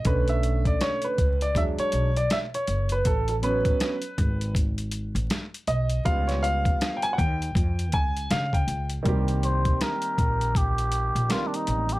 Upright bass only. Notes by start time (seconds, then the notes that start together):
0.05 B1
1.18 C#2
1.55 E2
1.78 muted upright bass stroke
1.93 B1
2.68 F#1
3.05 A1
4.18 G#1
5.15 A1
5.67 B1
6.05 C#2
7.18 D#2
7.55 F2
7.93 C#2
8.30 C#3
8.67 C#2
9.06 C2
10.18 A#1
11.15 A#1
11.68 A1